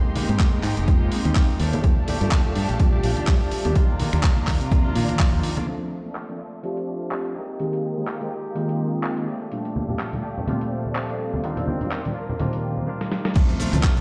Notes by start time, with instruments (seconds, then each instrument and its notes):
Already playing: clean electric guitar G#3 A#3 D#4 G4, analog polysynth G#3 A#3 C4 D#4 G4, violin section G#3 D#5 G5 C6
0.15 clean electric guitar G#3 A#3 D#4 G4, open hi-hat, high conga, low conga, shaker
0.29 fingered electric bass G#2, analog polysynth G#3 A#3 C4 D#4 G4, clean electric guitar A#3 D#4 G4, closed hi-hat, shaker
0.39 fingered electric bass F2, clean electric guitar G#3 A#3 D#4 G4, kick, clap, closed hi-hat
0.53 analog polysynth G#3 A#3 C4 D#4 G4, high conga
0.63 fingered electric bass G#2, clean electric guitar G#3 A#3 D#4 G4, clap, open hi-hat, shaker
0.77 fingered electric bass F1, clean electric guitar A#3 D#4 G4, closed hi-hat
0.87 analog polysynth G#3 A#3 C4 D#4 F4, kick, closed hi-hat, high conga, shaker
1.01 clean electric guitar A#3 D#4 G4
1.11 clean electric guitar G#3 A#3 D#4 G4, open hi-hat, shaker
1.25 fingered electric bass D#2, clean electric guitar A#3 D#4 G4, closed hi-hat, high conga, shaker
1.35 clean electric guitar G#3 A#3 D#4 G4, kick, clap, open hi-hat
1.50 shaker
1.59 fingered electric bass D#2, clean electric guitar F3 A3 D4 G4, violin section G4 D5 F5 A5, open hi-hat, shaker
1.73 closed hi-hat, high conga, shaker
1.84 fingered electric bass D#2, analog polysynth G3 D4 F4 A4, kick, closed hi-hat, shaker
2.07 clean electric guitar F3 A3 D4 G4, open hi-hat, high conga, low conga, shaker
2.20 fingered electric bass G2, analog polysynth G3 A#3 D4 F4 A4, clean electric guitar A3 D4 G4, closed hi-hat, shaker
2.31 fingered electric bass D#2, clean electric guitar F3 A3 D4 G4, kick, clap, closed hi-hat
2.45 analog polysynth G3 A#3 D4 F4 A4, high conga
2.55 fingered electric bass G2, clean electric guitar F3 A3 D4 G4, open hi-hat, shaker
2.68 fingered electric bass A#1, clean electric guitar A3 D4 G4, closed hi-hat, shaker
2.79 analog polysynth G3 D4 F4 G4, kick, closed hi-hat, high conga, low conga, shaker
2.92 clean electric guitar A3 D4 G4
3.03 fingered electric bass A#1, clean electric guitar F3 A3 D4 G4, open hi-hat, shaker
3.17 clean electric guitar A3 D4 G4, closed hi-hat, high conga, shaker
3.27 fingered electric bass G2, clean electric guitar F3 A3 D4 G4, kick, clap, open hi-hat
3.42 shaker
3.51 muted fingered electric bass stroke, open hi-hat, shaker
3.65 fingered electric bass D#2, clean electric guitar A3 D4 G4, closed hi-hat, high conga, shaker
3.75 fingered electric bass C2, clean electric guitar D#3 A#3 D4 F4, analog polysynth D#3 F3 A#3 D4 G4, violin section F4 D5 A#5, kick, closed hi-hat, shaker
3.89 shaker
3.99 clean electric guitar D#3 A#3 D4 F4, open hi-hat, high conga, low conga, shaker
4.13 fingered electric bass D#2, analog polysynth F3 A#3 D4 D#4 G4, clean electric guitar A#3 D4 F4, finger snap, closed hi-hat, shaker
4.23 fingered electric bass C2, clean electric guitar D#3 A#3 D4, kick, clap, closed hi-hat
4.37 analog polysynth F3 A#3 D4 D#4 G4, high conga, shaker
4.47 fingered electric bass D#2, clean electric guitar D#3 A#3 D4 F4, kick, clap, open hi-hat, shaker
4.60 fingered electric bass C3, clean electric guitar A#3 D4 F4, closed hi-hat, shaker
4.71 analog polysynth D#3 F3 A#3 D4 F4, kick, closed hi-hat, high conga, shaker
4.84 clean electric guitar A#3 D4 F4, shaker
4.95 fingered electric bass A#2, clean electric guitar D#3 A#3 D4 F4, open hi-hat, shaker
5.08 clean electric guitar A#3 D4 F4, closed hi-hat, high conga, shaker
5.19 clean electric guitar D#3 A#3 D4 F4, kick, clap, open hi-hat
5.33 fingered electric bass D#2, shaker
5.43 open hi-hat, shaker
5.57 clean electric guitar A#3 D4 F4, closed hi-hat, high conga, shaker
5.67 clean electric guitar F3 A3 D4 F4, analog polysynth F3 C4 D4 A4, violin section A3 D5 A5, closed hi-hat, crash
5.81 closed hi-hat
6.05 analog polysynth F3 A#3 C4 D4 A4
6.15 clap, closed hi-hat
6.29 analog polysynth F3 A#3 C4 D4 A4, closed hi-hat
6.39 clean electric guitar A3 D4 F4
6.63 clean electric guitar F3 A3 D4 F4, analog polysynth F3 C4 D4 G4, horn section F4, closed hi-hat
6.77 closed hi-hat
7.11 clean electric guitar F3 A3 D4 F4, clap, closed hi-hat
7.25 closed hi-hat
7.35 violin section G#3 F4 A#4 D#5 G5, clean electric guitar A#3 D#4 G4
7.39 clean electric guitar G#3
7.59 analog polysynth D#3 G#3 A#3 C4 G4, closed hi-hat
7.73 closed hi-hat
7.97 analog polysynth D#3 G#3 A#3 C4 G4
8.07 clap, closed hi-hat
8.21 analog polysynth D#3 G#3 A#3 C4 G4, horn section G4, closed hi-hat
8.55 analog polysynth D#3 G#3 A#3 C4 F4, clean electric guitar G#3 A#3 D#4 G4, closed hi-hat
8.69 closed hi-hat
9.03 clean electric guitar G#3 A#3 D#4 G4, clap, closed hi-hat
9.17 closed hi-hat
9.27 clean electric guitar A3 D4 G4, violin section G4 A4 D5 F5
9.31 clean electric guitar F3
9.51 analog polysynth A#2 F3 G3 A3 D4, closed hi-hat
9.65 closed hi-hat
9.76 high conga, shaker
9.88 analog polysynth A#2 F3 G3 A3 D4, low conga, shaker
9.99 clap, closed hi-hat, shaker
10.13 analog polysynth A#2 F3 G3 A3 D4, closed hi-hat, high conga
10.23 clean electric guitar A3 D4 G4, shaker
10.38 low conga, shaker
10.47 analog polysynth A#2 F3 G3 A3 C4, clean electric guitar F3 A3 D4 G4, horn section F4, closed hi-hat, high conga, shaker
10.61 closed hi-hat
10.72 shaker
10.85 high conga, shaker
10.95 clean electric guitar F3 A3 D4 G4, clap, closed hi-hat, shaker
11.09 horn section D4, closed hi-hat, shaker
11.34 high conga, shaker
11.43 analog polysynth A#2 D#3 F3 G3 D4, clean electric guitar D#3 A#3 D4 F4, horn section C4, violin section A#4 C5, closed hi-hat
11.57 closed hi-hat, low conga, shaker
11.68 high conga, shaker
11.81 analog polysynth A#2 D#3 F3 G3 D4, closed hi-hat, low conga, shaker
11.91 clap, closed hi-hat, shaker
12.05 analog polysynth A#2 D#3 F3 G3 D4, closed hi-hat, high conga
12.15 clean electric guitar A#3 D4 F4, shaker
12.29 low conga, shaker
12.39 analog polysynth A#2 D#3 F3 G3 C4, clean electric guitar D#3 A#3 D4 F4, closed hi-hat, high conga, shaker
12.53 closed hi-hat
12.64 shaker
12.77 high conga, shaker
12.87 clean electric guitar D#3 A#3 D4 F4
13.01 snare
13.12 snare
13.25 snare
13.35 fingered electric bass A#1, analog polysynth A#2 D3 F3 A3 C4, clean electric guitar F3 A3 D4 F4, violin section A3 D5 A#5, kick, crash, cabasa, shaker
13.49 closed hi-hat, low conga
13.59 clean electric guitar F3 A3 D4 F4, open hi-hat, high conga, cabasa, shaker
13.73 fingered electric bass D2, analog polysynth A#2 D3 F3 A3 C4, clap, closed hi-hat, low conga, cabasa, shaker
13.83 fingered electric bass A#1, clean electric guitar F3 A3 D4 F4, kick, clap, cabasa, shaker
13.97 analog polysynth A#2 D3 F3 A3, closed hi-hat